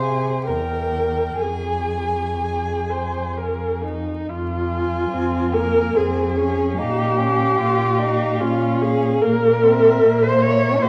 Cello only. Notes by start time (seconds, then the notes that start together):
Already playing: C3
0.49 E2
1.42 F2
4.29 F2
5.12 F2
5.97 F2
6.79 A#2
7.60 A#2
8.42 A#2
9.23 A#2
10.03 A#2
10.82 A#2